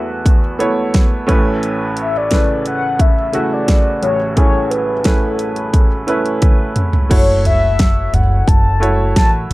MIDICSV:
0, 0, Header, 1, 5, 480
1, 0, Start_track
1, 0, Key_signature, 3, "major"
1, 0, Tempo, 684932
1, 1143, Time_signature, 4, 2, 24, 8
1, 6680, End_track
2, 0, Start_track
2, 0, Title_t, "Soft synth lead"
2, 0, Program_c, 0, 80
2, 0, Note_on_c, 0, 76, 80
2, 399, Note_off_c, 0, 76, 0
2, 1407, Note_on_c, 0, 76, 87
2, 1523, Note_on_c, 0, 74, 97
2, 1534, Note_off_c, 0, 76, 0
2, 1868, Note_off_c, 0, 74, 0
2, 1872, Note_on_c, 0, 78, 96
2, 2108, Note_on_c, 0, 76, 99
2, 2118, Note_off_c, 0, 78, 0
2, 2474, Note_on_c, 0, 74, 93
2, 2484, Note_off_c, 0, 76, 0
2, 2818, Note_off_c, 0, 74, 0
2, 2823, Note_on_c, 0, 73, 89
2, 3046, Note_off_c, 0, 73, 0
2, 3058, Note_on_c, 0, 73, 95
2, 3296, Note_on_c, 0, 71, 81
2, 3307, Note_off_c, 0, 73, 0
2, 3545, Note_on_c, 0, 69, 79
2, 3555, Note_off_c, 0, 71, 0
2, 4503, Note_off_c, 0, 69, 0
2, 4996, Note_on_c, 0, 73, 87
2, 5213, Note_off_c, 0, 73, 0
2, 5231, Note_on_c, 0, 76, 93
2, 5704, Note_on_c, 0, 78, 91
2, 5714, Note_off_c, 0, 76, 0
2, 5940, Note_on_c, 0, 81, 104
2, 5951, Note_off_c, 0, 78, 0
2, 6420, Note_off_c, 0, 81, 0
2, 6426, Note_on_c, 0, 81, 96
2, 6524, Note_off_c, 0, 81, 0
2, 6680, End_track
3, 0, Start_track
3, 0, Title_t, "Upright piano"
3, 0, Program_c, 1, 0
3, 0, Control_c, 1, 64, 127
3, 0, Note_on_c, 1, 40, 48
3, 0, Note_on_c, 1, 52, 50
3, 0, Note_on_c, 1, 57, 58
3, 0, Note_on_c, 1, 59, 57
3, 0, Note_on_c, 1, 64, 54
3, 0, Note_on_c, 1, 66, 63
3, 0, Note_on_c, 1, 71, 64
3, 270, Note_off_c, 1, 57, 0
3, 272, Note_off_c, 1, 59, 0
3, 274, Note_off_c, 1, 64, 0
3, 276, Note_off_c, 1, 66, 0
3, 412, Note_on_c, 1, 57, 66
3, 414, Note_on_c, 1, 59, 60
3, 418, Note_on_c, 1, 64, 65
3, 422, Note_on_c, 1, 73, 70
3, 870, Note_off_c, 1, 40, 0
3, 870, Note_off_c, 1, 52, 0
3, 877, Note_off_c, 1, 57, 0
3, 887, Note_on_c, 1, 57, 78
3, 889, Note_off_c, 1, 64, 0
3, 894, Note_on_c, 1, 61, 69
3, 897, Note_on_c, 1, 33, 63
3, 897, Note_on_c, 1, 45, 62
3, 898, Note_off_c, 1, 59, 0
3, 900, Note_on_c, 1, 64, 69
3, 902, Note_off_c, 1, 73, 0
3, 905, Note_off_c, 1, 71, 0
3, 905, Note_on_c, 1, 71, 84
3, 913, Control_c, 1, 64, 0
3, 1053, Control_c, 1, 64, 127
3, 1471, Note_off_c, 1, 57, 0
3, 1474, Note_off_c, 1, 61, 0
3, 1477, Note_off_c, 1, 64, 0
3, 1480, Note_off_c, 1, 71, 0
3, 1621, Note_on_c, 1, 57, 63
3, 1624, Note_on_c, 1, 49, 55
3, 1627, Note_on_c, 1, 64, 55
3, 1633, Note_on_c, 1, 71, 67
3, 2193, Note_off_c, 1, 57, 0
3, 2195, Note_off_c, 1, 49, 0
3, 2196, Note_off_c, 1, 64, 0
3, 2199, Note_off_c, 1, 71, 0
3, 2331, Note_on_c, 1, 57, 59
3, 2335, Note_on_c, 1, 49, 52
3, 2342, Note_on_c, 1, 64, 49
3, 2346, Note_on_c, 1, 66, 64
3, 2791, Note_off_c, 1, 45, 0
3, 2792, Note_off_c, 1, 33, 0
3, 2821, Note_on_c, 1, 33, 54
3, 2823, Note_on_c, 1, 45, 55
3, 2908, Note_off_c, 1, 57, 0
3, 2910, Note_off_c, 1, 49, 0
3, 2913, Note_off_c, 1, 64, 0
3, 2915, Note_off_c, 1, 66, 0
3, 3056, Note_on_c, 1, 57, 63
3, 3063, Note_on_c, 1, 61, 53
3, 3066, Note_on_c, 1, 64, 54
3, 3068, Note_on_c, 1, 68, 64
3, 3440, Note_off_c, 1, 57, 0
3, 3443, Note_off_c, 1, 61, 0
3, 3445, Note_off_c, 1, 64, 0
3, 3446, Note_off_c, 1, 68, 0
3, 3533, Note_on_c, 1, 57, 59
3, 3540, Note_on_c, 1, 61, 55
3, 3541, Note_on_c, 1, 64, 55
3, 3549, Note_on_c, 1, 71, 70
3, 4109, Note_off_c, 1, 57, 0
3, 4112, Note_off_c, 1, 61, 0
3, 4113, Note_off_c, 1, 64, 0
3, 4117, Note_off_c, 1, 71, 0
3, 4253, Note_on_c, 1, 57, 64
3, 4255, Note_on_c, 1, 61, 58
3, 4260, Note_on_c, 1, 64, 61
3, 4265, Note_on_c, 1, 71, 71
3, 4713, Note_off_c, 1, 33, 0
3, 4714, Note_off_c, 1, 45, 0
3, 4829, Note_off_c, 1, 57, 0
3, 4830, Note_off_c, 1, 61, 0
3, 4832, Note_off_c, 1, 64, 0
3, 4835, Note_off_c, 1, 71, 0
3, 4971, Note_on_c, 1, 57, 58
3, 4975, Note_on_c, 1, 64, 55
3, 4979, Note_on_c, 1, 66, 55
3, 4984, Note_on_c, 1, 73, 65
3, 4991, Control_c, 1, 64, 0
3, 5123, Control_c, 1, 64, 127
3, 5738, Note_off_c, 1, 57, 0
3, 5740, Note_off_c, 1, 64, 0
3, 5742, Note_off_c, 1, 66, 0
3, 5744, Note_off_c, 1, 73, 0
3, 6168, Note_on_c, 1, 57, 67
3, 6173, Note_on_c, 1, 64, 56
3, 6178, Note_on_c, 1, 66, 57
3, 6183, Note_on_c, 1, 73, 69
3, 6680, Note_off_c, 1, 57, 0
3, 6680, Note_off_c, 1, 64, 0
3, 6680, Note_off_c, 1, 66, 0
3, 6680, Note_off_c, 1, 73, 0
3, 6680, End_track
4, 0, Start_track
4, 0, Title_t, "Upright bass"
4, 0, Program_c, 2, 32
4, 4980, Note_on_c, 2, 30, 85
4, 5673, Note_off_c, 2, 30, 0
4, 5700, Note_on_c, 2, 30, 89
4, 5924, Note_off_c, 2, 30, 0
4, 5941, Note_on_c, 2, 30, 86
4, 6393, Note_off_c, 2, 30, 0
4, 6422, Note_on_c, 2, 33, 75
4, 6644, Note_off_c, 2, 33, 0
4, 6680, End_track
5, 0, Start_track
5, 0, Title_t, "Drums"
5, 180, Note_on_c, 9, 36, 93
5, 184, Note_on_c, 9, 42, 67
5, 250, Note_off_c, 9, 36, 0
5, 254, Note_off_c, 9, 42, 0
5, 423, Note_on_c, 9, 42, 57
5, 493, Note_off_c, 9, 42, 0
5, 659, Note_on_c, 9, 42, 72
5, 661, Note_on_c, 9, 38, 90
5, 662, Note_on_c, 9, 36, 92
5, 729, Note_off_c, 9, 42, 0
5, 731, Note_off_c, 9, 38, 0
5, 732, Note_off_c, 9, 36, 0
5, 902, Note_on_c, 9, 36, 89
5, 902, Note_on_c, 9, 42, 59
5, 972, Note_off_c, 9, 36, 0
5, 972, Note_off_c, 9, 42, 0
5, 1142, Note_on_c, 9, 42, 56
5, 1212, Note_off_c, 9, 42, 0
5, 1378, Note_on_c, 9, 42, 56
5, 1448, Note_off_c, 9, 42, 0
5, 1617, Note_on_c, 9, 42, 79
5, 1622, Note_on_c, 9, 36, 87
5, 1622, Note_on_c, 9, 38, 103
5, 1687, Note_off_c, 9, 42, 0
5, 1692, Note_off_c, 9, 36, 0
5, 1692, Note_off_c, 9, 38, 0
5, 1861, Note_on_c, 9, 42, 60
5, 1931, Note_off_c, 9, 42, 0
5, 2098, Note_on_c, 9, 36, 87
5, 2101, Note_on_c, 9, 42, 70
5, 2169, Note_off_c, 9, 36, 0
5, 2171, Note_off_c, 9, 42, 0
5, 2337, Note_on_c, 9, 42, 57
5, 2407, Note_off_c, 9, 42, 0
5, 2580, Note_on_c, 9, 42, 72
5, 2582, Note_on_c, 9, 36, 93
5, 2582, Note_on_c, 9, 38, 90
5, 2650, Note_off_c, 9, 42, 0
5, 2652, Note_off_c, 9, 36, 0
5, 2652, Note_off_c, 9, 38, 0
5, 2821, Note_on_c, 9, 42, 57
5, 2892, Note_off_c, 9, 42, 0
5, 3061, Note_on_c, 9, 42, 55
5, 3062, Note_on_c, 9, 36, 90
5, 3131, Note_off_c, 9, 42, 0
5, 3132, Note_off_c, 9, 36, 0
5, 3304, Note_on_c, 9, 42, 58
5, 3374, Note_off_c, 9, 42, 0
5, 3535, Note_on_c, 9, 42, 78
5, 3540, Note_on_c, 9, 38, 99
5, 3542, Note_on_c, 9, 36, 93
5, 3605, Note_off_c, 9, 42, 0
5, 3610, Note_off_c, 9, 38, 0
5, 3612, Note_off_c, 9, 36, 0
5, 3777, Note_on_c, 9, 42, 59
5, 3847, Note_off_c, 9, 42, 0
5, 3898, Note_on_c, 9, 42, 45
5, 3968, Note_off_c, 9, 42, 0
5, 4019, Note_on_c, 9, 36, 92
5, 4021, Note_on_c, 9, 42, 67
5, 4089, Note_off_c, 9, 36, 0
5, 4091, Note_off_c, 9, 42, 0
5, 4259, Note_on_c, 9, 42, 58
5, 4329, Note_off_c, 9, 42, 0
5, 4384, Note_on_c, 9, 42, 43
5, 4454, Note_off_c, 9, 42, 0
5, 4498, Note_on_c, 9, 42, 71
5, 4499, Note_on_c, 9, 48, 44
5, 4501, Note_on_c, 9, 36, 92
5, 4568, Note_off_c, 9, 42, 0
5, 4569, Note_off_c, 9, 48, 0
5, 4571, Note_off_c, 9, 36, 0
5, 4736, Note_on_c, 9, 42, 60
5, 4738, Note_on_c, 9, 45, 74
5, 4806, Note_off_c, 9, 42, 0
5, 4808, Note_off_c, 9, 45, 0
5, 4859, Note_on_c, 9, 43, 71
5, 4929, Note_off_c, 9, 43, 0
5, 4981, Note_on_c, 9, 36, 92
5, 4983, Note_on_c, 9, 42, 60
5, 4983, Note_on_c, 9, 49, 72
5, 5051, Note_off_c, 9, 36, 0
5, 5053, Note_off_c, 9, 42, 0
5, 5053, Note_off_c, 9, 49, 0
5, 5223, Note_on_c, 9, 42, 58
5, 5223, Note_on_c, 9, 43, 63
5, 5293, Note_off_c, 9, 42, 0
5, 5293, Note_off_c, 9, 43, 0
5, 5460, Note_on_c, 9, 42, 81
5, 5463, Note_on_c, 9, 36, 95
5, 5466, Note_on_c, 9, 38, 102
5, 5530, Note_off_c, 9, 42, 0
5, 5533, Note_off_c, 9, 36, 0
5, 5536, Note_off_c, 9, 38, 0
5, 5702, Note_on_c, 9, 42, 57
5, 5704, Note_on_c, 9, 43, 64
5, 5772, Note_off_c, 9, 42, 0
5, 5774, Note_off_c, 9, 43, 0
5, 5940, Note_on_c, 9, 36, 97
5, 5948, Note_on_c, 9, 42, 73
5, 6010, Note_off_c, 9, 36, 0
5, 6018, Note_off_c, 9, 42, 0
5, 6187, Note_on_c, 9, 42, 58
5, 6257, Note_off_c, 9, 42, 0
5, 6421, Note_on_c, 9, 36, 90
5, 6421, Note_on_c, 9, 42, 71
5, 6423, Note_on_c, 9, 38, 93
5, 6491, Note_off_c, 9, 36, 0
5, 6491, Note_off_c, 9, 42, 0
5, 6493, Note_off_c, 9, 38, 0
5, 6680, End_track
0, 0, End_of_file